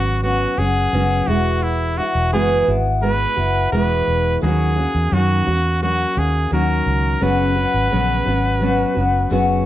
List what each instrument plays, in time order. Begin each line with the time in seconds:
Already playing: fingered electric bass G#1, steel-string acoustic guitar F#3 B3 C#4 F#4, trumpet F#4
0.22 steel-string acoustic guitar F#3 B3 C#4 F#4, trumpet F#4
0.57 fingered electric bass F#1, steel-string acoustic guitar F#3 B3 C#4 F#4, trumpet G#4
0.93 fingered electric bass F#1, steel-string acoustic guitar F#2 C#3 F#3 B3 C#4 F#4
1.27 fingered electric bass E1, steel-string acoustic guitar E3 G#3 B3 E4 F#4, trumpet F#4
1.63 trumpet E4
1.97 steel-string acoustic guitar B3 E4 F#4, trumpet F#4
2.15 fingered electric bass E1
2.33 fingered electric bass F#1, steel-string acoustic guitar E3 G#3 B3 E4 F#4, trumpet G#4
2.67 fingered electric bass G#1, steel-string acoustic guitar B3 E4 F#4
3.01 steel-string acoustic guitar G#3 B3 E4 F#4, trumpet B4
3.36 fingered electric bass F#1, steel-string acoustic guitar B3 E4 F#4
3.72 fingered electric bass E1, steel-string acoustic guitar E3 G#3 B3 E4 F#4, trumpet B4
4.08 fingered electric bass E1
4.41 fingered electric bass D#2, steel-string acoustic guitar D#3 F#3 A#3 C#4 F#4, trumpet G#4
4.76 steel-string acoustic guitar A#3 C#4 F#4
4.95 fingered electric bass E2
5.11 fingered electric bass F#2, steel-string acoustic guitar D#3 F#3 A#3 C#4 F#4, trumpet F#4
5.46 fingered electric bass E2, steel-string acoustic guitar A#3 C#4 F#4
5.81 steel-string acoustic guitar F#3 A#3 C#4 F#4, trumpet F#4
6.15 fingered electric bass D#2, steel-string acoustic guitar A#3 C#4 F#4, trumpet G#4
6.51 fingered electric bass D#2, steel-string acoustic guitar D#3 F#3 A#3 C#4 F#4, trumpet A#4
6.86 fingered electric bass C#2
7.21 fingered electric bass F#1, steel-string acoustic guitar F#2 C#3 F#3 B3 C#4 F#4, trumpet B4
7.55 steel-string acoustic guitar F#3 B3 C#4 F#4
7.74 fingered electric bass G#1
7.91 fingered electric bass A#1, steel-string acoustic guitar F#2 C#3 F#3 B3 C#4 F#4
8.26 fingered electric bass G#1, steel-string acoustic guitar F#3 B3 C#4 F#4
8.60 steel-string acoustic guitar F#3 B3 C#4 F#4
8.95 fingered electric bass F#1, steel-string acoustic guitar F#3 B3 C#4 F#4
9.30 fingered electric bass F#1, steel-string acoustic guitar F#2 C#3 F#3 B3 C#4 F#4